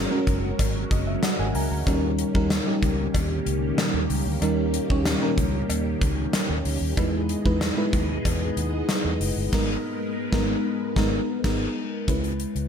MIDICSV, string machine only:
0, 0, Header, 1, 2, 480
1, 0, Start_track
1, 0, Tempo, 638298
1, 1405, Time_signature, 4, 2, 24, 8
1, 9537, End_track
2, 0, Start_track
2, 0, Title_t, "String machine"
2, 0, Program_c, 0, 50
2, 0, Note_on_c, 0, 54, 80
2, 0, Note_on_c, 0, 61, 76
2, 0, Note_on_c, 0, 66, 72
2, 0, Note_on_c, 0, 70, 90
2, 1376, Note_off_c, 0, 70, 0
2, 1377, Note_off_c, 0, 54, 0
2, 1387, Note_off_c, 0, 66, 0
2, 1404, Note_on_c, 0, 58, 70
2, 1406, Note_on_c, 0, 51, 80
2, 1406, Note_on_c, 0, 67, 89
2, 5214, Note_off_c, 0, 58, 0
2, 5215, Note_off_c, 0, 51, 0
2, 5215, Note_off_c, 0, 61, 0
2, 5215, Note_off_c, 0, 67, 0
2, 5241, Note_on_c, 0, 68, 90
2, 5242, Note_on_c, 0, 56, 80
2, 5242, Note_on_c, 0, 75, 73
2, 5243, Note_on_c, 0, 59, 73
2, 7144, Note_off_c, 0, 56, 0
2, 7144, Note_off_c, 0, 68, 0
2, 7145, Note_off_c, 0, 59, 0
2, 7164, Note_on_c, 0, 70, 75
2, 7165, Note_on_c, 0, 71, 91
2, 7166, Note_on_c, 0, 56, 84
2, 9054, Note_off_c, 0, 75, 0
2, 9065, Note_off_c, 0, 70, 0
2, 9066, Note_off_c, 0, 56, 0
2, 9066, Note_off_c, 0, 71, 0
2, 9537, End_track
0, 0, End_of_file